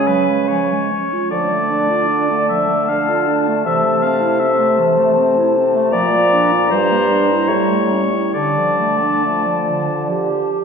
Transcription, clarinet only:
0.08 F#3
0.29 G#3
0.50 F3
0.72 G#3
0.92 C#4
1.13 F4
1.32 F3
1.51 A3
1.70 D4
1.90 F4
2.08 D4
2.30 A3
2.50 F3
2.68 A3
2.89 D4
3.09 F4
3.27 D4
3.48 A3
3.65 E3
3.84 A3
4.04 C4
4.21 E4
4.41 C4
4.59 A3
4.79 E3
4.99 A3
5.18 C4
5.38 E4
5.58 C4
5.76 A3
5.95 F3
6.15 A#3
6.33 D4
6.53 F4
6.72 G3
6.91 A#3
7.11 D4
7.31 E4
7.51 G3
7.71 A3
7.92 C#4
8.13 E4
8.35 D3
8.58 F3
8.80 A3
9.02 D4
9.25 A3
9.47 F3
9.69 D3
9.90 F3
10.10 G4

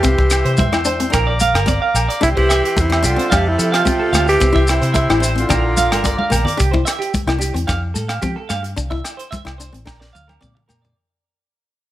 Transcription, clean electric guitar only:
0.45 C5
0.58 E5
0.86 C5
1.12 A#4
1.27 D5
1.41 F5
1.54 A#4
1.68 D5
1.82 F5
1.95 A#4
2.09 D5
2.22 G4
2.35 C5
2.49 E5
2.64 G4
3.04 G4
3.18 C5
3.30 F5
3.58 A4
3.72 F5
3.85 G4
3.99 A4
4.13 F5
4.28 G4
4.55 E5
4.81 C5
4.94 E5
5.22 C5
5.49 A#4
5.77 F5
5.91 A#4
6.05 D5
6.18 F5
6.32 A#4
6.45 D5
6.58 G4
6.71 C5
6.85 E5
6.99 G4
7.40 G4
7.54 muted clean electric guitar stroke
7.67 F5
7.94 A4
8.08 F5
8.22 G4
8.36 A4
8.49 F5
8.63 muted clean electric guitar stroke
8.90 E5
9.17 C5
9.31 E5
9.58 C5
9.86 A#4
10.00 D5
10.13 F5
10.28 A#4
10.41 D5
10.55 muted clean electric guitar stroke
10.68 A#4
10.82 D5

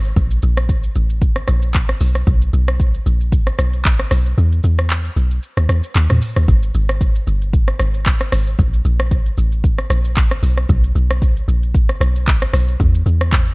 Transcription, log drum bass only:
Already playing: G#1
0.16 A#1
0.43 A#1
0.96 A1
1.48 A#1
2.01 B1
2.27 B1
2.53 B1
3.06 A#1
3.59 B1
4.11 B1
4.38 E2
4.64 E2
5.16 B1
5.57 D#2
5.69 E2
5.95 D#2
6.10 E2
6.37 D#2
6.48 G#1
6.75 G#1
7.27 G1
7.80 G#1
8.33 G#1
8.59 A#1
8.85 A#1
9.38 A1
9.90 A#1
10.43 B1
10.69 B1
10.95 B1
11.48 A#1
12.01 B1
12.53 B1
12.80 E2
13.06 E2

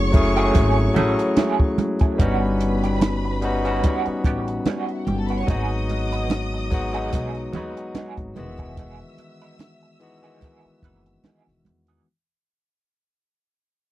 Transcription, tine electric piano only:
Already playing: F#3 A3 C#4 E4 G#4
0.12 F#3 A3 C#4 E4 G#4
0.35 F#3 A3 C#4 E4 G#4
0.94 F#3 A3 C#4 E4 G#4
2.18 G3 B3 C#4 D#4 F#4
3.42 G3 B3 C#4 D#4 F#4
3.63 G3 B3 C#4 D#4 F#4
5.47 F#3 G#3 A#3 D#4 F#4
5.55 B3
6.70 F#3 G#3 B3 D#4 F#4
6.92 F#3 G#3 B3 D#4 F#4
7.52 F#3 G#3 B3 D#4 F#4
8.35 D#3 E3 G#3 B3 F#4
9.99 E3 G#3 B3 D#4 F#4
10.21 D#3 E3 G#3 B3 F#4

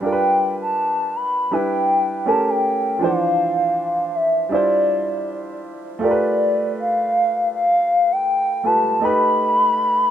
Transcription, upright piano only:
0.01 G3 D4 F4
0.06 A#4
0.12 B4
1.51 G3 D4 E4 B4
2.26 A3 C#4 G4 A#4
2.99 E3 F3 D4
3.04 C5
4.49 G3 D4 E4 F4
4.55 C5
5.99 A3 F4 G4
6.04 A#4
6.11 B4
8.64 A3 F4 G4 B4
9.00 A3 D#4 G4
9.05 B4

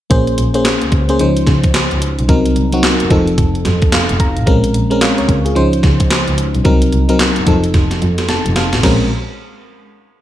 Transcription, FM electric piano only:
0.10 A#3 C#4 G#4 C5
0.54 A#3 C#4 G#4 C5
1.09 A#3 C#4 G#4 C5
1.20 F3 C#4 D#4 C5
2.28 F#3 C4 D#4 A#4
2.73 F#3 C4 D#4 F#4
3.10 F3 C4 D#4 A4
3.93 F5
4.20 A#5
4.46 G#3 C4 C#4 A#4
4.90 G#3 C4 C#4 A#4
5.01 C#5 F5
5.18 A#4 C#5
5.28 A#4
5.45 F4 G#4
5.55 F3 C#4 D#4 C5
6.64 F#3 C4 D#4 A#4
7.09 F#3 C4 D#4 A#4
7.47 F3 C4 D#4 A4
8.29 A5
8.56 F5
8.83 G#3 C4 C#4 A#4

